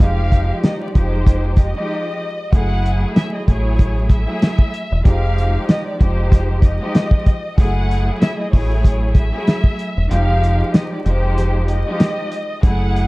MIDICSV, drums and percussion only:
0, 0, Header, 1, 2, 480
1, 0, Start_track
1, 0, Tempo, 631579
1, 1, Time_signature, 4, 2, 24, 8
1, 9935, End_track
2, 0, Start_track
2, 0, Title_t, "Drums"
2, 0, Note_on_c, 9, 36, 118
2, 2, Note_on_c, 9, 42, 84
2, 76, Note_off_c, 9, 36, 0
2, 78, Note_off_c, 9, 42, 0
2, 243, Note_on_c, 9, 36, 85
2, 250, Note_on_c, 9, 42, 67
2, 319, Note_off_c, 9, 36, 0
2, 326, Note_off_c, 9, 42, 0
2, 482, Note_on_c, 9, 42, 78
2, 483, Note_on_c, 9, 40, 99
2, 490, Note_on_c, 9, 38, 117
2, 558, Note_off_c, 9, 42, 0
2, 559, Note_off_c, 9, 40, 0
2, 566, Note_off_c, 9, 38, 0
2, 724, Note_on_c, 9, 36, 91
2, 724, Note_on_c, 9, 42, 72
2, 800, Note_off_c, 9, 36, 0
2, 800, Note_off_c, 9, 42, 0
2, 962, Note_on_c, 9, 36, 101
2, 966, Note_on_c, 9, 42, 99
2, 1038, Note_off_c, 9, 36, 0
2, 1042, Note_off_c, 9, 42, 0
2, 1192, Note_on_c, 9, 36, 97
2, 1197, Note_on_c, 9, 42, 75
2, 1268, Note_off_c, 9, 36, 0
2, 1273, Note_off_c, 9, 42, 0
2, 1920, Note_on_c, 9, 36, 119
2, 1922, Note_on_c, 9, 42, 89
2, 1996, Note_off_c, 9, 36, 0
2, 1998, Note_off_c, 9, 42, 0
2, 2170, Note_on_c, 9, 42, 68
2, 2246, Note_off_c, 9, 42, 0
2, 2402, Note_on_c, 9, 42, 81
2, 2403, Note_on_c, 9, 40, 106
2, 2410, Note_on_c, 9, 38, 126
2, 2478, Note_off_c, 9, 42, 0
2, 2479, Note_off_c, 9, 40, 0
2, 2486, Note_off_c, 9, 38, 0
2, 2644, Note_on_c, 9, 36, 93
2, 2644, Note_on_c, 9, 42, 77
2, 2720, Note_off_c, 9, 36, 0
2, 2720, Note_off_c, 9, 42, 0
2, 2882, Note_on_c, 9, 36, 107
2, 2887, Note_on_c, 9, 42, 101
2, 2958, Note_off_c, 9, 36, 0
2, 2963, Note_off_c, 9, 42, 0
2, 3113, Note_on_c, 9, 36, 99
2, 3118, Note_on_c, 9, 42, 82
2, 3189, Note_off_c, 9, 36, 0
2, 3194, Note_off_c, 9, 42, 0
2, 3360, Note_on_c, 9, 42, 90
2, 3363, Note_on_c, 9, 40, 104
2, 3369, Note_on_c, 9, 38, 125
2, 3436, Note_off_c, 9, 42, 0
2, 3439, Note_off_c, 9, 40, 0
2, 3445, Note_off_c, 9, 38, 0
2, 3485, Note_on_c, 9, 36, 102
2, 3561, Note_off_c, 9, 36, 0
2, 3600, Note_on_c, 9, 42, 83
2, 3676, Note_off_c, 9, 42, 0
2, 3840, Note_on_c, 9, 36, 127
2, 3842, Note_on_c, 9, 42, 90
2, 3916, Note_off_c, 9, 36, 0
2, 3918, Note_off_c, 9, 42, 0
2, 4091, Note_on_c, 9, 42, 68
2, 4167, Note_off_c, 9, 42, 0
2, 4323, Note_on_c, 9, 42, 85
2, 4324, Note_on_c, 9, 40, 100
2, 4331, Note_on_c, 9, 38, 123
2, 4399, Note_off_c, 9, 42, 0
2, 4400, Note_off_c, 9, 40, 0
2, 4407, Note_off_c, 9, 38, 0
2, 4565, Note_on_c, 9, 36, 91
2, 4565, Note_on_c, 9, 42, 76
2, 4641, Note_off_c, 9, 36, 0
2, 4641, Note_off_c, 9, 42, 0
2, 4802, Note_on_c, 9, 36, 107
2, 4808, Note_on_c, 9, 42, 104
2, 4814, Note_on_c, 9, 38, 38
2, 4878, Note_off_c, 9, 36, 0
2, 4884, Note_off_c, 9, 42, 0
2, 4890, Note_off_c, 9, 38, 0
2, 5033, Note_on_c, 9, 36, 99
2, 5039, Note_on_c, 9, 42, 80
2, 5109, Note_off_c, 9, 36, 0
2, 5115, Note_off_c, 9, 42, 0
2, 5280, Note_on_c, 9, 42, 92
2, 5283, Note_on_c, 9, 40, 106
2, 5290, Note_on_c, 9, 38, 124
2, 5356, Note_off_c, 9, 42, 0
2, 5359, Note_off_c, 9, 40, 0
2, 5366, Note_off_c, 9, 38, 0
2, 5405, Note_on_c, 9, 36, 105
2, 5481, Note_off_c, 9, 36, 0
2, 5521, Note_on_c, 9, 36, 99
2, 5521, Note_on_c, 9, 42, 80
2, 5597, Note_off_c, 9, 36, 0
2, 5597, Note_off_c, 9, 42, 0
2, 5760, Note_on_c, 9, 36, 126
2, 5762, Note_on_c, 9, 42, 91
2, 5836, Note_off_c, 9, 36, 0
2, 5838, Note_off_c, 9, 42, 0
2, 6012, Note_on_c, 9, 42, 67
2, 6088, Note_off_c, 9, 42, 0
2, 6245, Note_on_c, 9, 42, 82
2, 6246, Note_on_c, 9, 40, 100
2, 6252, Note_on_c, 9, 38, 121
2, 6321, Note_off_c, 9, 42, 0
2, 6322, Note_off_c, 9, 40, 0
2, 6328, Note_off_c, 9, 38, 0
2, 6485, Note_on_c, 9, 36, 93
2, 6485, Note_on_c, 9, 46, 55
2, 6561, Note_off_c, 9, 36, 0
2, 6561, Note_off_c, 9, 46, 0
2, 6722, Note_on_c, 9, 36, 104
2, 6727, Note_on_c, 9, 42, 98
2, 6798, Note_off_c, 9, 36, 0
2, 6803, Note_off_c, 9, 42, 0
2, 6953, Note_on_c, 9, 36, 101
2, 6958, Note_on_c, 9, 42, 80
2, 7029, Note_off_c, 9, 36, 0
2, 7034, Note_off_c, 9, 42, 0
2, 7200, Note_on_c, 9, 42, 90
2, 7203, Note_on_c, 9, 40, 102
2, 7209, Note_on_c, 9, 38, 127
2, 7276, Note_off_c, 9, 42, 0
2, 7279, Note_off_c, 9, 40, 0
2, 7285, Note_off_c, 9, 38, 0
2, 7325, Note_on_c, 9, 36, 103
2, 7401, Note_off_c, 9, 36, 0
2, 7440, Note_on_c, 9, 42, 85
2, 7516, Note_off_c, 9, 42, 0
2, 7683, Note_on_c, 9, 42, 93
2, 7759, Note_off_c, 9, 42, 0
2, 7931, Note_on_c, 9, 42, 67
2, 8007, Note_off_c, 9, 42, 0
2, 8163, Note_on_c, 9, 42, 84
2, 8164, Note_on_c, 9, 40, 99
2, 8170, Note_on_c, 9, 38, 126
2, 8239, Note_off_c, 9, 42, 0
2, 8240, Note_off_c, 9, 40, 0
2, 8246, Note_off_c, 9, 38, 0
2, 8404, Note_on_c, 9, 42, 74
2, 8480, Note_off_c, 9, 42, 0
2, 8647, Note_on_c, 9, 42, 100
2, 8653, Note_on_c, 9, 38, 36
2, 8723, Note_off_c, 9, 42, 0
2, 8729, Note_off_c, 9, 38, 0
2, 8878, Note_on_c, 9, 42, 81
2, 8954, Note_off_c, 9, 42, 0
2, 9119, Note_on_c, 9, 42, 88
2, 9122, Note_on_c, 9, 40, 105
2, 9128, Note_on_c, 9, 38, 124
2, 9195, Note_off_c, 9, 42, 0
2, 9198, Note_off_c, 9, 40, 0
2, 9204, Note_off_c, 9, 38, 0
2, 9360, Note_on_c, 9, 42, 81
2, 9436, Note_off_c, 9, 42, 0
2, 9600, Note_on_c, 9, 36, 127
2, 9602, Note_on_c, 9, 42, 91
2, 9676, Note_off_c, 9, 36, 0
2, 9678, Note_off_c, 9, 42, 0
2, 9851, Note_on_c, 9, 42, 66
2, 9927, Note_off_c, 9, 42, 0
2, 9935, End_track
0, 0, End_of_file